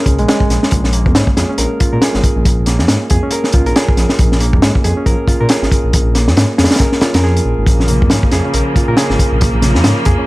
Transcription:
Already playing: A#3 C#4 F4 G#4 A#4
0.06 C#2 G#3, kick, closed hi-hat
0.19 A#1 G#3, closed hi-hat
0.28 G#3, snare, closed hi-hat
0.40 kick
0.49 A#1, snare, closed hi-hat
0.63 snare
0.71 A#1, kick, closed hi-hat
0.84 snare
0.93 A#3, closed hi-hat
1.06 F2, kick
1.15 G#2, snare, closed hi-hat
1.27 kick
1.37 F2 G#4, snare, closed hi-hat
1.49 C#4
1.58 A#1 A#4, closed hi-hat
1.80 F4, kick, closed hi-hat
1.93 A#2 A#4
2.02 G#4, snare, closed hi-hat
2.14 G#1, snare
2.24 kick, closed hi-hat
2.36 A#1
2.45 kick, closed hi-hat
2.66 A#3, snare, closed hi-hat
2.79 F2, snare
2.88 G#2, snare, closed hi-hat
3.10 F2 G#4, kick, closed hi-hat
3.23 C#4
3.31 A#4, closed hi-hat
3.44 snare
3.52 C#2 F4, kick, closed hi-hat
3.66 A#1 A#4, closed hi-hat
3.76 G#4, snare, closed hi-hat
3.88 kick
3.97 A#1, snare, closed hi-hat
4.09 snare
4.19 A#1, kick, closed hi-hat
4.32 snare
4.40 A#3, closed hi-hat
4.53 F2, kick
4.62 G#2, snare, closed hi-hat
4.75 kick
4.84 F2 G#4, closed hi-hat
4.97 C#4
5.06 A#1 A#4, kick, closed hi-hat
5.28 F4, kick, closed hi-hat
5.41 A#2 A#4
5.49 G#4, snare, closed hi-hat
5.62 G#1, snare
5.72 kick, closed hi-hat
5.84 A#1
5.93 kick, closed hi-hat
6.15 A#3, snare, closed hi-hat
6.28 F2, snare
6.37 G#2, snare, closed hi-hat
6.58 F2 G#4, snare, closed hi-hat
6.64 snare, closed hi-hat
6.71 C#4, snare, closed hi-hat
6.75 snare, closed hi-hat
6.79 A#4, kick, closed hi-hat
6.92 snare
7.01 F4, snare, closed hi-hat
7.14 F2 A#4, snare, closed hi-hat
7.23 G#4, snare
7.37 closed hi-hat
7.45 A#1
7.58 G#1
7.66 A#1 C#3 F3 A#3, kick, closed hi-hat
7.80 snare, high conga
7.88 A#3, closed hi-hat, low conga
8.01 F2, kick, high conga
8.10 G#2, snare, closed hi-hat
8.23 kick
8.32 F2 G#4, snare, closed hi-hat
8.45 C#4
8.54 A#1 A#4, closed hi-hat
8.76 F4, kick, closed hi-hat
8.88 A#2 A#4
8.97 G#4, snare, closed hi-hat
9.10 G#1, snare
9.19 kick, closed hi-hat
9.32 A#1
9.41 kick, closed hi-hat
9.54 high conga
9.62 A#3, snare, closed hi-hat, low conga
9.75 F2, snare
9.84 G#2, snare, closed hi-hat
10.05 F2 G#4, kick, closed hi-hat
10.18 C#4

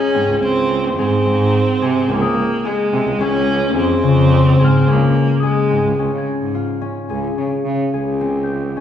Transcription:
Already playing: C#4 G#4 C6
0.14 G#2 C4
0.29 C#2
0.43 C#2 C4
0.98 G#2 C4 G#4
1.26 G#2 C4
1.82 C3 G#4
2.09 C#2 A#3 C4
2.22 D#6
2.65 G#3 G#4
2.93 C3 C4
3.07 C#2
3.20 C#2 C#4
3.75 F2 C4 G#4
4.03 F2 C#3
4.59 G#2 G#4
4.64 F6
4.88 C#2 A#3 C#4
5.40 G#3 G#4 D#6
5.71 G#2 C4
5.86 C#2
5.99 C#2 C#4
6.14 C#3 G#6
6.42 G#2
6.55 F4
6.81 C#4
7.10 C#2 G#4
7.38 C#3 C#4
7.65 C#3
7.93 C#2 G#4
8.21 C4
8.44 G6
8.77 C#4

